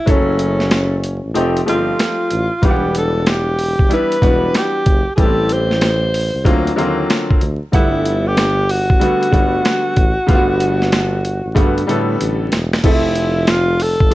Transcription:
Already playing: E4
0.06 F#1 F#3 A3 C#4 E4 A4, kick, closed hi-hat
0.11 C#4
0.39 closed hi-hat
0.60 snare
0.71 snare, closed hi-hat
1.04 closed hi-hat
1.24 A1
1.34 F1 F3 A3 C4 D#4 G4, closed hi-hat
1.57 closed hi-hat
1.66 G1 F3 A3 C4 D#4 F4 G4, closed hi-hat
1.99 snare, closed hi-hat
2.31 A1, closed hi-hat
2.62 E1 E3 G3 B3 D4 F4 G4, kick, closed hi-hat
2.71 F#5
2.95 A4, closed hi-hat
3.27 G4, snare, closed hi-hat
3.59 open hi-hat
3.79 F#1, kick
3.89 E3 G3 B3 D4 E4, closed hi-hat
3.94 B4
4.12 closed hi-hat
4.21 E1 E3 G3 B3 D4 F#4, kick, closed hi-hat
4.54 G4, snare, closed hi-hat
4.86 F#1, kick, closed hi-hat
5.16 A1 E3 G3 A3 B3 G4 G#4, kick, closed hi-hat
5.21 A4
5.25 C4
5.49 C5, closed hi-hat
5.71 snare
5.81 snare, closed hi-hat
6.14 open hi-hat
6.34 C2
6.44 D2 D3 F#3 A#3 C4 F4, kick, closed hi-hat
6.67 closed hi-hat
6.76 D#2 D3 F#3 A#3 C4 F4, closed hi-hat
7.10 snare, closed hi-hat
7.31 kick
7.41 D2, closed hi-hat
7.72 G1 D3 G3 A3 B3 E4 F#5, kick, closed hi-hat
8.05 closed hi-hat
8.27 G4
8.37 snare, closed hi-hat
8.69 F#4, open hi-hat
8.90 A1, kick
9.00 D3 G3 A3 B3 F#4, closed hi-hat
9.23 closed hi-hat
9.31 G1 D3 G3 A3 B3 F#4, kick, closed hi-hat
9.65 snare, closed hi-hat
9.96 A1, kick, closed hi-hat
10.27 G1 D3 G3 A3 B3 F4, kick, closed hi-hat
10.35 F#4
10.60 closed hi-hat
10.82 snare
10.92 snare, closed hi-hat
11.25 closed hi-hat
11.45 A1
11.55 G2 D3 G3 A3 B3 F#4, kick, closed hi-hat
11.78 closed hi-hat
11.87 A2 D3 G3 A3 B3 A4, closed hi-hat
12.20 A1, closed hi-hat
12.52 E1, snare, closed hi-hat
12.73 snare
12.83 F1 F3 A3 C4 E4 A4, kick, closed hi-hat, crash
13.15 closed hi-hat
13.47 F4, snare, closed hi-hat
13.80 A4, open hi-hat
14.00 G1, kick
14.10 E3 F3 A3

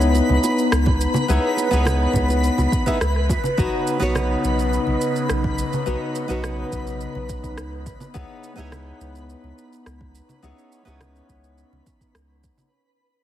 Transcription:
Already playing: C#2 B3 D#4 E4 G#4 B4 C#5 B5
0.01 shaker
0.15 high bongo, shaker
0.29 C#2, high conga
0.43 high bongo, shaker
0.58 shaker
0.72 C#2, cross-stick, shaker
0.86 kick, high bongo, low conga
1.00 B4, shaker
1.14 high bongo, high conga, shaker
1.28 C#2 B3 D#4 E4 G#4 C#5, shaker
1.57 high bongo, shaker
1.71 C#2 B3 D#4 E4 G#4 C#5, shaker
1.85 cross-stick, high bongo, high conga, shaker
2.13 C#2, kick, low conga, shaker
2.29 high bongo, shaker
2.44 shaker
2.58 C#2, high bongo, high conga, shaker
2.72 kick, shaker
2.86 B3 D#4 E4 G#4 E5, kick, shaker
3.01 C#2, cross-stick, high bongo, shaker
3.16 cross-stick
3.29 kick, high bongo, shaker
3.44 high conga, shaker
3.57 B1 C#3 B3 D#4 F#4 B4 C#5, kick, shaker
3.87 shaker
4.00 B1 B3 D#4 F#4 B4 C#5, shaker
4.15 cross-stick, high conga, shaker
4.44 B1, shaker
4.59 shaker
4.73 shaker
4.87 B1, high conga
5.01 shaker
5.16 shaker
5.29 B1, cross-stick, shaker
5.44 kick
5.58 shaker
5.73 high conga, shaker
5.86 B1 B3 D#4 F#4 B4 C#5, shaker
6.15 shaker
6.28 B1 B3 D#4 F#4 B4 C#5, shaker
6.44 cross-stick, high conga, shaker
6.72 B1, kick, shaker
6.87 shaker
7.01 shaker
7.15 B1, high conga
7.29 kick, shaker
7.44 kick, shaker
7.58 C#2, cross-stick, shaker
7.86 B3, kick, shaker
8.00 high conga, shaker
8.14 C#2 B3 D#4 E4 G#4 C#5, kick, shaker
8.44 shaker
8.56 C#2 B3 D#4 E4 G#4 C#5, shaker
8.72 cross-stick, high conga, shaker
9.01 C#2, shaker
9.15 shaker
9.30 shaker
9.43 C#2, high conga
9.58 shaker
9.73 shaker
9.86 C#2, cross-stick, shaker
10.01 kick
10.15 C#4, shaker
10.29 high conga, shaker
10.42 C#2 B3 D#4 E4 G#4 C#5, shaker
10.58 shaker
10.72 shaker
10.85 C#2 B3 D#4 E4 G#4 C#5, shaker
11.01 cross-stick, high conga, shaker
11.16 shaker
11.29 C#2, kick, shaker
11.44 shaker
11.58 shaker
11.72 C#2, high conga
11.86 kick, shaker
12.01 kick, shaker
12.15 C#2, cross-stick, shaker
12.44 kick, shaker
12.58 high conga, shaker

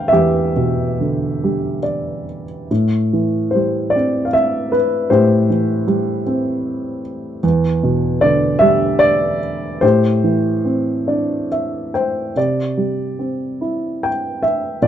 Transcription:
Already playing: B2 D3 G3 F5 G5
0.08 E5
0.13 E2 G4
0.56 B2
1.01 D3
1.44 G3
1.83 D5
2.71 A2
3.13 E3
3.51 C5
3.55 G3
3.90 D5
3.96 C4
4.25 F5
4.33 E5
4.72 B4
5.10 A2 G4 C5
5.50 E3
5.87 G3
6.27 C4
7.43 E2
7.83 B2
8.21 D3 D5
8.59 G3 E5
8.99 D5
9.81 A2 G4 C5
10.24 E3
10.65 C4
11.07 D4 D5
11.52 E5
11.94 C5 G5
12.36 C3 D5
12.77 G3
13.19 C4
13.61 E4
14.03 G5
14.43 E5
14.82 A#2 D5

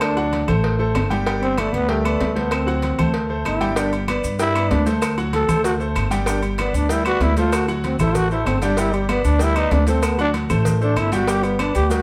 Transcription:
Already playing: D2 A3 A4 C5
0.01 D4, cowbell, high conga, low agogo, claves
0.16 F#3 F#4 F#5, high conga, low agogo
0.33 cowbell, high conga, low agogo
0.48 A1 A3 A4 C5, high conga, low conga, low agogo, claves
0.64 cowbell
0.79 A3 A4 C5, high conga
0.95 G1, cowbell, high conga, low timbale, low agogo, claves
1.10 G3 G4 G5, cowbell, high conga, low agogo
1.26 G3 G4 G5, cowbell, high conga, low agogo
1.42 C4, high conga, low agogo
1.57 A3 B3 B4 D5, cowbell, high conga, low agogo, claves
1.73 D2 B3, low agogo
1.89 G3 A3 G4 G5, cowbell, high conga
2.04 B3 B4 D5, high conga, low agogo, claves
2.20 D2, cowbell, high conga, low timbale, low agogo
2.35 A3 B3 A4 C5, cowbell, high conga
2.51 C4, cowbell, high conga, low agogo, claves
2.66 F#3 F#4 F#5, low agogo
2.82 cowbell, high conga, low agogo
2.98 D2 A3 A4 C5, high conga, low conga, low agogo, claves
3.14 cowbell, high conga
3.29 A3 A4 C5, high conga
3.45 G1 E4, cowbell, high conga, low agogo, claves
3.60 G3 G4 G5, cowbell, high conga, low agogo
3.75 G3 D4 G4 G5, cowbell, high conga, low agogo, maracas
3.92 high conga, low agogo, maracas
4.08 B3 B4 D5, cowbell, high conga, low agogo, claves, maracas
4.24 G2, low agogo, maracas
4.39 G3 E4 G4 G5, cowbell, high conga, maracas
4.55 B3 B4 D5, high conga, low agogo, claves, maracas
4.71 D2 D4, cowbell, high conga, low timbale, low agogo, maracas
4.85 A3 A4 C5, cowbell, high conga, maracas
5.02 cowbell, low agogo, claves, maracas
5.18 F#3 F#4 F#5, low agogo, maracas
5.33 A4, cowbell, high conga, low agogo, maracas
5.48 D2 A3 A4 C5, high conga, low conga, low agogo, claves, maracas
5.64 F#4, cowbell, high conga, maracas
5.79 A3 A4 C5, high conga, maracas
5.96 G1, cowbell, high conga, low agogo, claves, maracas
6.11 G3 G4 G5, cowbell, high conga, low agogo, maracas
6.26 G3 D4 G4 G5, cowbell, high conga, low agogo, maracas
6.43 G3, high conga, low agogo, maracas
6.58 B3 B4 D5, cowbell, high conga, low agogo, claves, maracas
6.73 D2 D4, low agogo, maracas
6.89 G3 E4 G4 G5, cowbell, high conga, maracas
7.05 B3 F#4 B4 D5, high conga, low agogo, claves, maracas
7.20 D2 E4, cowbell, high conga, low timbale, low agogo, maracas
7.37 A3 F4 A4 C5, cowbell, high conga, maracas
7.53 F#4, cowbell, low agogo, claves, maracas
7.68 F#3 A3 F#4 F#5, low agogo, maracas
7.84 C4, cowbell, high conga, low agogo, maracas
7.98 A1 A3 E4 A4 C5, high conga, low conga, low agogo, claves, maracas
8.15 F#4, cowbell, high conga, low conga, maracas
8.31 A3 E4 A4 C5, maracas
8.46 G1 C4, cowbell, high conga, low timbale, low agogo, claves, maracas
8.62 G3 D4 G4 G5, cowbell, high conga, low agogo, maracas
8.77 G3 E4 G4 G5, cowbell, low agogo, maracas
8.93 G3, high conga, low agogo, maracas
9.09 B3 B4 D5, cowbell, high conga, low agogo, claves, maracas
9.24 D2 D4, low agogo, maracas
9.39 G3 E4 G4 G5, cowbell, maracas
9.55 B3 D#4 B4 D5, low agogo, claves, maracas
9.71 D2 D4, cowbell, high conga, low timbale, low agogo, maracas
9.87 A3 C4 A4 C5, cowbell, high conga, maracas
10.03 B3, cowbell, high conga, low agogo, claves, maracas
10.18 F#3 D4 F#4 F#5, low agogo, maracas
10.34 cowbell, high conga, low agogo, maracas
10.50 A1 A3 A4 C5, high conga, low conga, low agogo, claves, maracas
10.65 cowbell, high conga, low conga, maracas
10.81 A3 D4 A4 C5, high conga, maracas
10.96 G1 E4, cowbell, high conga, low agogo, claves, maracas
11.12 G3 F#4 G4 G5, cowbell, high conga, low agogo, maracas
11.27 G3 G4 G5, cowbell, low agogo, maracas
11.43 B3, low agogo, maracas
11.59 B3 D4 B4 D5, cowbell, high conga, low agogo, claves, maracas
11.75 D2 G4, low agogo, maracas
11.90 G3 F#4 G4 G5, cowbell, maracas

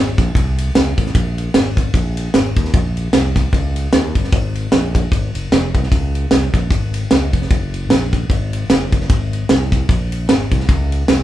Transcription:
Already playing: G#1
0.18 A#1, kick, snare, ride
0.35 C2, kick, ride
0.58 ride
0.75 C#2, snare, ride
0.98 A1, kick, ride
1.06 snare
1.15 A#1, kick, ride
1.38 ride
1.54 G#1, snare, ride
1.77 kick, ride
1.94 A#1, kick, ride
2.17 ride
2.34 G#1, snare, ride
2.56 D#2, kick, ride
2.65 snare
2.74 A#1, kick, ride
2.97 ride
3.13 C2, snare, ride
3.36 kick, snare, ride
3.53 C#2, kick, ride
3.76 ride
3.93 D#2, snare, ride
4.15 G1, kick, ride
4.24 snare
4.32 G#1, kick, ride
4.55 ride
4.72 A#1, snare, ride
4.95 kick, ride
5.12 G#1, kick, ride
5.35 F#1, ride
5.52 F1, snare, ride
5.75 C2, kick, ride
5.83 snare
5.92 C#2, kick, ride
6.15 ride
6.31 C2, snare, ride
6.54 A#1, kick, snare, ride
6.71 G#1, kick, ride
6.94 ride
7.11 C#2, snare, ride
7.33 F1, kick, ride
7.42 snare
7.51 F#1, kick, ride
7.74 ride
7.90 A#1, snare, ride
8.13 kick, ride
8.30 G#1, kick, ride
8.53 ride
8.70 F#1, snare, ride
8.92 kick, ride
9.01 snare
9.10 G#1, kick, ride
9.33 ride
9.49 C2, snare, ride
9.72 kick, snare, ride
9.89 A#1, kick, ride
10.12 ride
10.29 G#1, snare, ride
10.51 C2, kick, ride
10.60 snare
10.69 C#2, kick, ride
10.92 ride
11.08 C2, snare, ride

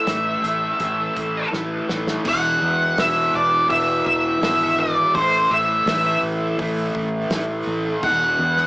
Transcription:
Already playing: E5
0.07 A1 A2 E3 A3, snare, closed hi-hat
0.43 A1 E3 A3, closed hi-hat
0.79 A1 A2 E3 A3, kick, closed hi-hat
1.14 A1 E3 A3, kick, closed hi-hat
1.51 A1 A2 E3 A3, snare
1.88 A1 E3 A3, snare
2.07 snare
2.23 E1 E2 B2 E3, kick, crash
2.29 F#5
2.60 E2 B2 E3
2.98 E1 E2 B2 E3 E5, snare, open hi-hat
3.34 E1 D5
3.68 E1 E2 B2 E3 E5, kick, open hi-hat
4.06 E1 E5, kick
4.41 G#1 E2 B2 E3, snare, open hi-hat
4.80 D5
5.14 A1 A2 E3 A3 C5, kick, open hi-hat
5.51 A1 E3 A3 E5
5.86 A1 A2 E3 A3, snare, open hi-hat
6.23 A1
6.59 A1 A2 E3 A3, kick, open hi-hat
6.95 A1, kick
7.30 A1 A2 E3, snare, open hi-hat
7.34 A3
7.67 A1
8.03 E1 E2 B2 E3 F#5, kick, crash
8.39 E2 B2 E3
8.57 snare

